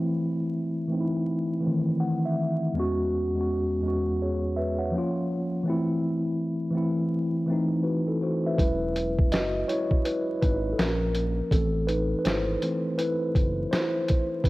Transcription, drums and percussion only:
8.58 kick loud
8.58 closed hi-hat medium
8.96 closed hi-hat medium
9.19 kick loud
9.32 snare loud
9.32 closed hi-hat medium
9.69 closed hi-hat medium
9.91 kick medium
10.05 closed hi-hat medium
10.42 kick medium
10.42 closed hi-hat medium
10.79 snare loud
10.79 closed hi-hat medium
11.15 closed hi-hat medium
11.51 kick loud
11.51 closed hi-hat medium
11.88 closed hi-hat medium
12.25 snare loud
12.25 closed hi-hat medium
12.62 closed hi-hat medium
12.99 closed hi-hat medium
13.35 kick loud
13.35 closed hi-hat medium
13.73 snare loud
13.73 closed hi-hat medium
14.08 kick medium
14.08 closed hi-hat medium
14.44 kick loud
14.44 closed hi-hat medium

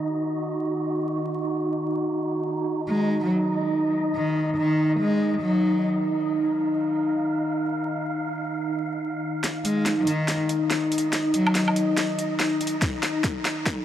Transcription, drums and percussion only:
9.44 snare soft
9.44 closed hi-hat medium
9.65 closed hi-hat medium
9.86 snare soft
9.86 closed hi-hat medium
10.07 closed hi-hat medium
10.28 snare soft
10.28 closed hi-hat medium
10.49 closed hi-hat medium
10.70 snare medium
10.70 closed hi-hat soft
10.92 closed hi-hat medium
10.98 closed hi-hat medium
11.13 snare medium
11.13 closed hi-hat medium
11.34 closed hi-hat medium
11.47 low woodblock medium
11.55 snare medium
11.55 closed hi-hat medium
11.68 low woodblock soft
11.76 closed hi-hat medium
11.97 snare medium
11.97 closed hi-hat medium
12.19 closed hi-hat medium
12.40 snare medium
12.40 closed hi-hat medium
12.61 closed hi-hat soft
12.67 closed hi-hat medium
12.82 kick loud
12.82 snare medium
12.82 closed hi-hat medium
13.03 snare medium
13.03 closed hi-hat medium
13.24 kick medium
13.24 snare medium
13.24 closed hi-hat medium
13.45 snare medium
13.45 closed hi-hat medium
13.66 kick loud
13.66 snare medium
13.66 closed hi-hat medium

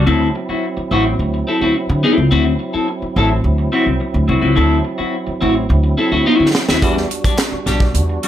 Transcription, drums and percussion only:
6.55 snare medium
6.69 snare medium
6.82 kick loud
6.82 closed hi-hat medium
6.97 snare soft
7.11 closed hi-hat medium
7.24 kick loud
7.24 closed hi-hat medium
7.38 snare loud
7.38 clap loud
7.38 closed hi-hat medium
7.67 snare soft
7.67 closed hi-hat medium
7.80 kick loud
7.80 snare soft
7.94 closed hi-hat medium
8.23 closed hi-hat medium

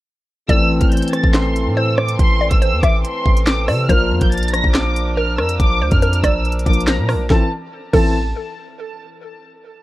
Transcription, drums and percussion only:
0.49 kick loud
0.49 closed hi-hat medium
0.81 kick loud
0.81 closed hi-hat medium
0.92 closed hi-hat medium
0.97 closed hi-hat medium
1.02 closed hi-hat medium
1.08 closed hi-hat medium
1.13 cross-stick medium
1.13 closed hi-hat medium
1.24 kick medium
1.34 snare loud
1.34 clap loud
1.34 closed hi-hat medium
1.56 closed hi-hat medium
1.98 cross-stick loud
2.09 closed hi-hat medium
2.19 kick loud
2.19 closed hi-hat medium
2.51 kick loud
2.51 closed hi-hat medium
2.62 closed hi-hat medium
2.83 kick loud
2.83 cross-stick medium
2.83 closed hi-hat medium
3.05 closed hi-hat medium
3.26 kick loud
3.37 closed hi-hat medium
3.47 snare loud
3.47 clap loud
3.47 closed hi-hat medium
3.68 cross-stick loud
3.68 open hi-hat medium
3.89 kick loud
3.89 closed hi-hat medium
4.21 kick loud
4.21 closed hi-hat medium
4.32 closed hi-hat medium
4.37 closed hi-hat medium
4.43 closed hi-hat medium
4.48 closed hi-hat medium
4.53 cross-stick medium
4.53 closed hi-hat medium
4.64 kick medium
4.74 snare loud
4.74 clap loud
4.74 closed hi-hat medium
4.96 closed hi-hat medium
5.38 cross-stick loud
5.49 closed hi-hat medium
5.60 kick loud
5.60 closed hi-hat medium
5.91 kick loud
5.91 closed hi-hat medium
6.02 closed hi-hat medium
6.13 closed hi-hat medium
6.24 kick medium
6.24 cross-stick medium
6.24 closed hi-hat medium
6.45 closed hi-hat soft
6.52 closed hi-hat medium
6.59 closed hi-hat medium
6.66 kick loud
6.66 closed hi-hat medium
6.73 closed hi-hat medium
6.80 closed hi-hat medium
6.87 snare loud
6.87 clap medium
6.87 closed hi-hat medium
7.09 cross-stick loud
7.09 open hi-hat medium
7.30 kick loud
7.30 snare medium
7.94 kick loud
7.94 crash medium

